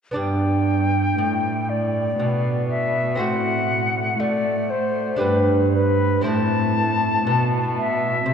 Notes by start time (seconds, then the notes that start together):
0.11 B3 D4 D5
0.16 G2 G5
1.18 A2
1.69 D5
2.20 B2
2.69 E5
3.15 C4 F#4 C5
3.20 A2 F#5
4.20 A3 D5
4.70 C5
5.16 D4 G4 B4
5.21 G2 B4
5.73 B4
6.21 C4 E4 C5
6.26 A2 A5
7.27 B2
7.77 E5
8.26 C3